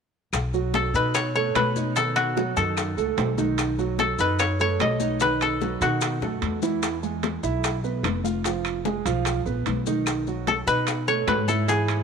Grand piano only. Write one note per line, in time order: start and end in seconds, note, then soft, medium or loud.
0.54 0.87 F#3 medium
0.54 0.87 F#4 medium
0.95 1.28 D#4 medium
0.95 1.28 D#5 medium
1.35 1.69 A3 medium
1.35 1.69 A4 medium
1.76 1.93 D#4 medium
1.76 1.93 D#5 medium
1.97 2.30 D#3 medium
1.97 2.30 D#4 medium
2.36 2.53 F#3 medium
2.36 2.53 F#4 medium
2.57 2.90 D#3 medium
2.57 2.90 D#4 medium
2.98 3.31 A3 medium
2.98 3.31 A4 medium
3.38 3.71 D#3 medium
3.38 3.71 D#4 medium
3.79 4.12 F#3 medium
3.79 4.12 F#4 medium
4.19 4.53 D#4 medium
4.19 4.53 D#5 medium
4.60 4.93 A3 medium
4.60 4.93 A4 medium
5.01 5.17 D#4 medium
5.01 5.17 D#5 medium
5.21 5.54 D#3 medium
5.21 5.54 D#4 medium
5.62 5.78 F#3 medium
5.62 5.78 F#4 medium
5.82 6.15 D#3 medium
5.82 6.15 D#4 medium
6.23 6.56 A3 medium
6.23 6.56 A4 medium
6.63 6.96 E3 medium
6.63 6.96 E4 medium
7.03 7.36 G#3 medium
7.03 7.36 G#4 medium
7.43 7.77 E4 medium
7.43 7.77 E5 medium
7.84 8.17 B3 medium
7.84 8.17 B4 medium
8.24 8.41 F4 medium
8.24 8.41 F5 medium
8.45 8.78 F3 medium
8.45 8.78 F4 medium
8.85 9.02 G#3 medium
8.85 9.02 G#4 medium
9.05 9.39 F3 medium
9.05 9.39 F4 medium
9.46 9.79 B3 medium
9.46 9.79 B4 medium
9.87 10.20 D#3 medium
9.87 10.20 D#4 medium
10.28 10.60 F#3 medium
10.28 10.61 F#4 medium
10.67 11.00 D#4 medium
10.67 11.01 D#5 medium
11.08 11.41 A3 medium
11.08 11.41 A4 medium
11.48 11.65 E4 medium
11.48 11.65 E5 medium
11.68 12.01 E3 medium
11.68 12.01 E4 medium